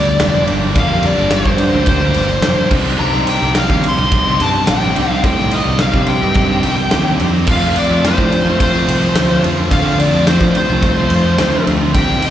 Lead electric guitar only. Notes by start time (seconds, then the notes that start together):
Already playing: D5
0.78 F5
1.06 D5
1.34 C5
1.88 C5
2.99 A#5
3.29 G5
3.58 F5
3.89 C6
4.42 A5
4.69 G5
5.09 F5
5.26 G5
5.53 D#5
5.81 F5
6.07 G5
7.51 F5
7.79 D5
8.06 C5
8.62 C5
9.72 F5
9.99 D5
10.27 C5
10.57 C5
11.95 G5
12.25 D#5